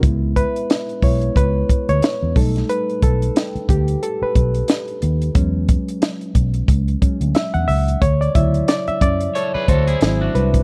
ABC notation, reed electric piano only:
X:1
M:4/4
L:1/16
Q:"Swing 16ths" 1/4=90
K:Bdor
V:1 name="Reed electric piano"
z2 B4 c2 B3 c3 A2 | B2 A4 =G2 A B6- B- | B3 z8 z e f e2 | c d e2 d e d2 c2 ^B4 =B2 |]
V:2 name="Reed electric piano"
[G,B,E]6 [G,B,E]2 z6 [=G,A,^D]2- | [=G,A,^D]12- [G,A,D]2 z2 | [F,G,C]6 z4 [F,G,C]2 z4 | z2 [C,F,E]8- [C,F,E]2 [F,^B,E]4 |]